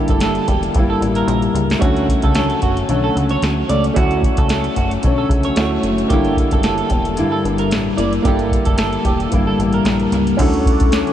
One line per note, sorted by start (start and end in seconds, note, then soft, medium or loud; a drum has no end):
0.00 0.75 D3 medium
0.00 0.75 G3 medium
0.00 0.77 A#3 medium
0.00 1.77 A#3 medium
0.00 1.78 D4 medium
0.00 0.77 E4 medium
0.00 1.78 E4 medium
0.00 1.79 A4 medium
0.08 0.40 F#1 medium
0.08 0.21 A4 medium
0.08 kick medium
0.08 closed hi-hat soft
0.20 0.48 A4 medium
0.20 snare medium
0.20 closed hi-hat medium
0.35 closed hi-hat soft
0.48 0.69 E1 medium
0.48 0.62 G4 medium
0.48 kick medium
0.48 closed hi-hat medium
0.63 closed hi-hat soft
0.74 0.97 G1 medium
0.74 1.81 G2 medium
0.74 1.81 D3 medium
0.74 1.82 G3 medium
0.74 kick medium
0.74 closed hi-hat medium
0.78 1.83 A#3 medium
0.78 1.84 E4 medium
0.90 1.01 A4 medium
1.01 1.23 A1 medium
1.01 closed hi-hat medium
1.15 1.42 A#4 medium
1.15 closed hi-hat soft
1.28 1.49 A#1 loud
1.28 closed hi-hat medium
1.42 closed hi-hat soft
1.54 1.76 C#2 medium
1.54 closed hi-hat medium
1.70 snare medium
1.70 closed hi-hat soft
1.79 2.15 D2 medium
1.79 2.34 D3 medium
1.79 2.35 F#3 medium
1.79 3.91 A3 medium
1.79 3.92 C#4 medium
1.79 3.93 E4 medium
1.79 2.07 F#4 medium
1.79 kick loud
1.79 closed hi-hat medium
1.84 2.36 A3 medium
1.84 2.37 C#4 medium
1.84 3.94 F#4 medium
1.97 closed hi-hat soft
2.08 kick medium
2.08 closed hi-hat medium
2.22 2.55 C#2 medium
2.22 2.34 A4 medium
2.22 kick medium
2.22 closed hi-hat soft
2.35 2.88 D3 medium
2.35 2.88 F#3 medium
2.35 2.89 A3 medium
2.35 2.90 C#4 medium
2.35 2.61 A4 medium
2.35 snare medium
2.35 closed hi-hat medium
2.50 closed hi-hat soft
2.62 2.84 F#1 medium
2.62 2.77 F#4 medium
2.62 kick medium
2.62 closed hi-hat medium
2.77 closed hi-hat soft
2.89 3.10 B1 medium
2.89 3.72 D3 medium
2.89 3.70 F#3 medium
2.89 3.69 A3 medium
2.89 3.67 C#4 medium
2.89 closed hi-hat medium
3.04 3.15 A4 medium
3.16 3.37 C#2 medium
3.16 closed hi-hat medium
3.29 3.42 C#5 medium
3.29 closed hi-hat soft
3.42 3.64 D2 medium
3.42 snare loud
3.42 closed hi-hat medium
3.69 3.91 C#2 medium
3.69 3.95 F#3 soft
3.69 3.97 A3 soft
3.69 3.96 C#4 medium
3.69 3.84 D5 medium
3.69 closed hi-hat medium
3.84 closed hi-hat soft
3.94 4.29 D2 loud
3.94 5.03 F#3 medium
3.94 5.53 A3 medium
3.94 5.54 C#4 medium
3.94 5.54 E4 medium
3.94 4.22 F#4 medium
3.94 kick loud
3.94 closed hi-hat medium
3.98 5.05 A3 medium
3.98 5.05 C#4 medium
3.98 5.55 F#4 medium
4.11 closed hi-hat soft
4.23 kick medium
4.23 closed hi-hat medium
4.37 4.69 C#2 medium
4.37 4.49 A4 medium
4.37 kick loud
4.37 closed hi-hat medium
4.49 4.75 A4 medium
4.49 snare loud
4.49 closed hi-hat medium
4.64 closed hi-hat soft
4.76 4.98 F#1 medium
4.76 4.91 F#4 medium
4.76 kick medium
4.76 closed hi-hat medium
4.91 closed hi-hat soft
5.02 5.25 B1 medium
5.02 6.10 D3 medium
5.02 6.11 F#3 medium
5.02 6.12 A3 medium
5.02 kick medium
5.02 closed hi-hat medium
5.07 6.13 C#4 medium
5.18 5.30 A4 medium
5.29 5.51 C#2 medium
5.29 kick medium
5.29 closed hi-hat medium
5.43 5.70 C#5 medium
5.43 closed hi-hat soft
5.56 5.78 D2 medium
5.56 6.10 A3 medium
5.56 6.11 C#4 medium
5.56 6.10 E4 medium
5.56 6.11 F#4 medium
5.56 snare loud
5.56 closed hi-hat medium
5.83 6.05 F#1 medium
5.83 closed hi-hat medium
5.98 closed hi-hat soft
6.08 6.44 G1 loud
6.08 7.17 D3 medium
6.08 7.17 G3 medium
6.08 8.20 A#3 medium
6.08 8.21 D4 medium
6.08 8.21 E4 medium
6.08 6.36 G4 loud
6.08 kick loud
6.08 closed hi-hat medium
6.13 7.17 A#3 medium
6.13 7.18 E4 medium
6.13 8.22 A4 medium
6.25 closed hi-hat soft
6.37 kick medium
6.37 closed hi-hat medium
6.51 6.83 F#1 medium
6.51 6.63 A4 medium
6.51 kick medium
6.51 closed hi-hat medium
6.63 6.90 A4 medium
6.63 snare loud
6.63 closed hi-hat medium
6.78 closed hi-hat soft
6.90 7.24 E1 medium
6.90 7.05 G4 medium
6.90 kick medium
6.90 closed hi-hat medium
7.05 closed hi-hat soft
7.17 7.98 G2 medium
7.17 8.00 D3 medium
7.17 7.98 G3 medium
7.17 7.98 A#3 medium
7.17 7.96 E4 medium
7.17 closed hi-hat medium
7.32 7.44 A4 medium
7.45 7.73 G1 medium
7.45 closed hi-hat medium
7.58 7.71 A#4 medium
7.58 closed hi-hat soft
7.71 7.93 A1 medium
7.71 snare loud
7.71 closed hi-hat medium
7.97 8.20 F#1 medium
7.97 8.25 G3 soft
7.97 8.25 A#3 soft
7.97 8.24 E4 medium
7.97 8.12 D5 medium
7.97 closed hi-hat medium
8.13 closed hi-hat soft
8.22 8.58 G1 loud
8.22 9.32 D3 medium
8.22 9.32 G3 medium
8.22 10.34 A#3 medium
8.22 10.35 D4 medium
8.22 10.36 E4 medium
8.22 8.50 G4 medium
8.22 kick loud
8.22 closed hi-hat medium
8.27 9.33 A#3 medium
8.27 9.34 E4 medium
8.27 10.36 A4 medium
8.39 closed hi-hat soft
8.51 kick medium
8.51 closed hi-hat medium
8.65 8.98 F#1 medium
8.65 8.77 A4 medium
8.65 kick medium
8.65 closed hi-hat medium
8.78 9.04 A4 medium
8.78 snare loud
8.78 closed hi-hat medium
8.93 closed hi-hat soft
9.05 9.27 E1 medium
9.05 9.19 G4 medium
9.05 kick medium
9.05 closed hi-hat medium
9.20 closed hi-hat soft
9.30 9.54 G1 medium
9.30 10.38 G2 medium
9.30 10.37 D3 medium
9.30 10.40 G3 medium
9.30 kick medium
9.30 closed hi-hat medium
9.35 10.41 A#3 medium
9.35 10.41 E4 medium
9.47 9.58 A4 medium
9.59 9.80 A1 medium
9.59 closed hi-hat medium
9.73 9.99 A#4 medium
9.73 closed hi-hat soft
9.85 10.07 A#1 loud
9.85 snare loud
9.85 closed hi-hat medium
10.00 closed hi-hat soft
10.12 10.34 C#2 medium
10.12 snare soft
10.12 closed hi-hat medium
10.27 closed hi-hat soft
10.37 11.04 D2 loud
10.37 11.13 D3 medium
10.37 11.13 F#3 medium
10.37 11.13 C#4 medium
10.37 11.13 E4 medium
10.37 11.13 F#4 medium
10.37 11.13 A4 medium
10.37 11.13 F#5 medium
10.37 11.13 C#6 medium
10.37 11.13 D6 medium
10.37 kick loud
10.37 closed hi-hat medium
10.37 crash loud
10.42 11.13 A3 loud
10.42 11.13 C#4 medium
10.42 11.13 A4 medium
10.54 closed hi-hat soft
10.66 kick loud
10.66 closed hi-hat medium
10.80 kick loud
10.80 closed hi-hat medium
10.92 snare loud
10.92 clap medium
10.92 closed hi-hat medium
11.07 closed hi-hat soft